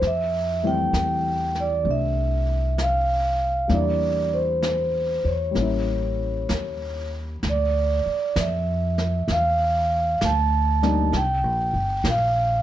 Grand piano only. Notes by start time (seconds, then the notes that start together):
0.63 E3 G3 A3 C4
1.83 A3 D4
3.68 G3 A#3 D4
3.73 E4
5.51 G3 A#3
5.59 C#4 E4
10.82 G3 A#3 D4 D#4